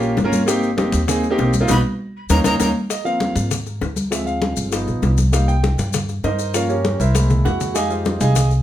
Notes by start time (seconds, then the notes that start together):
Already playing: A#1 A#3 C#4 F4 G4
0.02 high bongo, high conga, maracas
0.17 G#1, high bongo, low bongo, high conga, maracas
0.24 A#3 C#4 F4 A#4
0.32 high bongo, high conga, maracas
0.46 A#3 C4 D#4 G4, high bongo, maracas
0.63 high conga, maracas
0.77 A#3 C4 D#4 G4, high bongo, high conga, maracas
0.92 D#2, high bongo, high conga, maracas
1.08 A#3 C4 D#4 G#4, high bongo, high conga, low conga, maracas
1.23 high bongo, high conga, maracas
1.30 A#3 C4 D#4 G4
1.38 B1, high bongo, low bongo, high conga, maracas
1.53 high bongo, high conga, maracas
1.60 A#3 C4 D#4 F4
1.68 B1 B3 D#4 F#4 B5, low bongo, high conga, maracas
2.29 D#2 A#3 C#4 D#4 A#5, low bongo, high conga, maracas
2.44 D#2 A#3 C#4 D#4 A#5, low bongo, high conga, maracas
2.59 D#2 A#3 C#4 D#4 A#5, low bongo, high conga, maracas
2.90 D#5, high bongo, high conga, maracas
3.04 F3 A#3 C4 F5, high conga, maracas
3.20 high bongo, high conga, maracas
3.36 G#2, high bongo, high conga, maracas
3.51 high bongo, high conga, low conga, maracas
3.66 high bongo, high conga, maracas
3.81 D2, high bongo, low bongo, high conga, maracas
3.96 high bongo, high conga, maracas
4.11 F3 G#3 C4 E5, high bongo, high conga, maracas
4.26 F5, high conga, maracas
4.42 high bongo, high conga, maracas
4.57 G1, high bongo, maracas
4.71 F3 B3 D#4, high bongo, high conga, maracas
4.87 A#1, high bongo, high conga, maracas
5.02 C2, high bongo, low bongo, high conga, maracas
5.17 high bongo, high conga, maracas
5.32 G3 A#3 D#4 F5, high bongo, maracas
5.48 G5, high conga, maracas
5.64 high bongo, high conga, maracas
5.78 G2, high bongo, high conga, maracas
5.93 high bongo, high conga, low conga, maracas
6.09 high bongo, high conga, maracas
6.24 G2 D#4 A#4 C5 D#5, high bongo, low bongo, high conga, maracas
6.39 high bongo, maracas
6.54 F3 A#3 C#4 F4 A#4 C#5 F5, high bongo, high conga, maracas
6.69 C#4 G4 A#4 C#5, high conga, maracas
6.85 high bongo, high conga, maracas
7.00 C2 E4 A#4 C5 E5, high bongo, high conga, maracas
7.14 G#3 A#3 E4, high bongo, high conga, maracas
7.30 high bongo, low conga, maracas
7.45 F2 F#4 F#5, high bongo, low bongo, maracas
7.61 high bongo, low conga, maracas
7.74 G#3 D#4 G4 G#4 D#5 F5 G#5, high bongo, high conga, maracas
7.90 F4 G#4 C5 F5, high conga, maracas
8.05 high bongo, high conga, maracas
8.20 C2 G3 G#3 D#4 G#4 D#5 F5 G#5, high bongo, high conga, maracas
8.36 high bongo, high conga, low conga, maracas
8.51 high bongo, high conga, maracas